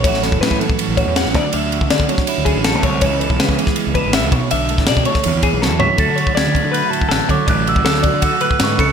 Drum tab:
RD |x-x-x-x-x-x-x-x-|x-x-x-x-x-x-x-x-|x-x-x-x-x-x-x-x-|x-x-x-x-x-x-----|
SD |-oo-o-------ooo-|----o--o----o---|----o--o----oo--|---oo--o----o---|
FT |----------------|----------------|----------------|--------------o-|
BD |o--o-o-o--o---o-|---o-o-o--o---o-|o--o-o-o--o---o-|---o-o-o--o-----|

RD |x-x-x-x-x-x-x-x-|x-x-x-x-x-x-x-x-|
SD |----o-------o---|----oo------o---|
FT |----------------|----------------|
BD |o--o--o----o--o-|o--o--o-o--o--o-|